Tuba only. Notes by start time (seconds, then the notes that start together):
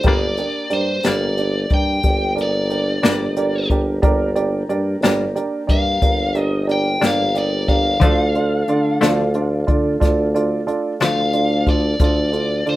0.04 G1
0.72 G2
1.04 G1
1.71 G2
2.04 G1
3.04 G1
4.03 G1
4.68 G2
5.00 G1
5.68 G2
6.02 G1
7.01 G1
8.01 D2
8.68 D3
9.02 D2
9.68 D3
10.01 D2
11.01 D2
11.99 D2
12.66 D3